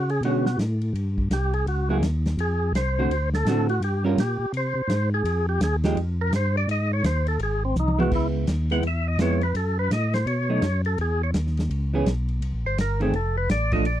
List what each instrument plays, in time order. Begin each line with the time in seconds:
Already playing: tonewheel organ C#3 F#4
0.09 tonewheel organ G#4, ride
0.21 tonewheel organ B2, hollow-body jazz guitar D3, ride
0.25 hollow-body jazz guitar G#3 C#4 F#4, tonewheel organ F#4
0.46 tonewheel organ F#4, snare
0.58 tonewheel organ A2, snare, hi-hat pedal, ride
0.81 ride
0.93 tonewheel organ G2, ride
1.18 kick
1.30 tonewheel organ C2 G4, snare, hi-hat pedal, ride
1.53 tonewheel organ G#4, ride
1.66 tonewheel organ C#2 F#4, ride
1.89 hollow-body jazz guitar F#3 A#3 E4 G#4, tonewheel organ F#4
2.01 tonewheel organ D#2, snare, hi-hat pedal, ride
2.26 snare, ride
2.37 tonewheel organ F2 G#4, ride
2.72 tonewheel organ C2 C5, snare, hi-hat pedal, ride
2.99 hollow-body jazz guitar D3 A3 C4 F#4
3.09 tonewheel organ D2, ride
3.34 tonewheel organ A4, snare
3.45 tonewheel organ A2, hollow-body jazz guitar D3 A3 C4 F#4, snare, hi-hat pedal, ride
3.69 tonewheel organ F#4, ride
3.80 tonewheel organ G2 G4, ride
4.04 hollow-body jazz guitar G3 C#4 F4 A#4
4.17 tonewheel organ A#2 G4, snare, hi-hat pedal, ride
4.39 tonewheel organ A#2
4.53 tonewheel organ C3, ride
4.57 tonewheel organ C5
4.75 tonewheel organ C3
4.87 tonewheel organ G#2, snare, hi-hat pedal, ride
5.14 tonewheel organ G#4
5.24 tonewheel organ F2, ride
5.49 tonewheel organ G4
5.60 tonewheel organ D#2 G#4, snare, hi-hat pedal, ride
5.84 hollow-body jazz guitar F3 G#3 D#4 G4, snare, ride
5.96 tonewheel organ F2, ride
6.21 tonewheel organ A#4
6.31 tonewheel organ G2, snare, hi-hat pedal, ride
6.36 tonewheel organ C5
6.57 tonewheel organ D5
6.67 tonewheel organ G#2 D#5, ride
6.93 tonewheel organ C#5
7.03 tonewheel organ D#2 C5, snare, hi-hat pedal, ride
7.27 tonewheel organ A4, ride
7.38 tonewheel organ G#1, ride
7.43 tonewheel organ G#4
7.65 tonewheel organ C4
7.75 tonewheel organ C2, hi-hat pedal, high tom
7.79 tonewheel organ D#4
7.88 high tom
7.98 hollow-body jazz guitar G#3 B3 E4, tonewheel organ F#4, high tom
8.11 tonewheel organ C#2 E4, kick, crash
8.47 tonewheel organ D#2, snare, hi-hat pedal, ride
8.70 hollow-body jazz guitar G#3 B3 E4, tonewheel organ F#5, ride
8.82 tonewheel organ E2, ride
8.87 tonewheel organ E5
9.08 tonewheel organ D#5
9.18 tonewheel organ F2 C#5, hollow-body jazz guitar G#3 B3 E4, snare, hi-hat pedal, ride
9.41 tonewheel organ B4, ride
9.54 tonewheel organ F#2 A4, ride
9.79 tonewheel organ B4
9.90 tonewheel organ A2 D#5, snare, hi-hat pedal, ride
10.14 tonewheel organ C5, snare, ride
10.26 tonewheel organ B2 C#5, ride
10.49 hollow-body jazz guitar F#3 A3 D#4
10.62 tonewheel organ F#2, snare, hi-hat pedal, ride
10.85 tonewheel organ A4, ride
10.98 tonewheel organ E2 G#4, ride
11.23 tonewheel organ C#5
11.34 tonewheel organ D#2, snare, hi-hat pedal, ride
11.47 snare
11.57 snare, ride
11.69 tonewheel organ C#2, ride
11.93 hollow-body jazz guitar E3 B3 C#4 G#4
12.06 tonewheel organ B1, snare, hi-hat pedal, ride
12.29 ride
12.41 tonewheel organ C2, ride
12.53 tonewheel organ A#1
12.64 tonewheel organ G1 C5
12.77 tonewheel organ G1 A#4, snare, hi-hat pedal, ride
13.00 hollow-body jazz guitar D#3 A3 C4, tonewheel organ G#4, ride
13.13 tonewheel organ F1 A4, ride
13.37 tonewheel organ B4
13.49 tonewheel organ A1 D5, snare, hi-hat pedal, ride
13.72 hollow-body jazz guitar F3 A3 D4, tonewheel organ D#5, kick, ride
13.84 tonewheel organ A#1 D5, ride